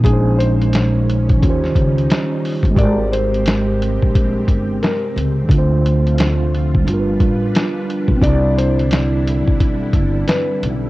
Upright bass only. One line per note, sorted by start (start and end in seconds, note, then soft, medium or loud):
0.04 1.37 A#1 loud
1.43 1.71 D#2 loud
1.76 2.04 C#2 medium
2.64 2.75 G1 medium
2.77 3.96 G#1 loud
4.03 4.41 A#1 medium
4.48 4.77 G1 medium
5.16 5.45 C#2 medium
5.49 6.82 D2 loud
6.87 7.15 G1 medium
7.21 7.49 A1 medium
8.09 8.20 B1 medium
8.22 9.42 C2 loud
9.48 9.95 B1 medium
9.94 10.22 G1 medium
10.63 10.90 B1 loud